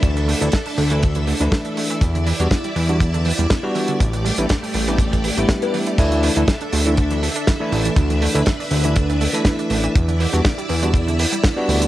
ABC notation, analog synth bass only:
X:1
M:4/4
L:1/16
Q:"Swing 16ths" 1/4=121
K:Edor
V:1 name="Analog synth bass" clef=bass
D,,2 z D,, z2 D,,4 z D,, z4 | E,,2 z E,, z2 E,,4 z E,, z4 | A,,,2 z A,,, z2 A,,,4 z A,,, z4 | D,,2 z D,, z2 D,,4 z4 A,,, z |
D,,2 z D,, z2 D,,4 z4 A,,, z | E,,2 z E,, z2 E,,4 z4 D,, z |]